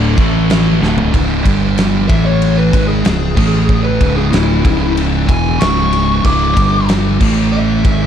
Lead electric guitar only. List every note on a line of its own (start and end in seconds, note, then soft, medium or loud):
2.08 2.24 E5 medium
2.25 2.56 C#5 medium
2.57 2.87 B4 medium
2.87 3.81 G#4 medium
3.84 4.16 B4 medium
4.16 4.32 G#4 medium
4.31 4.94 E4 loud
5.29 5.60 G#5 loud
5.60 6.22 C#6 medium
6.25 6.87 D6 loud
7.52 8.07 E5 loud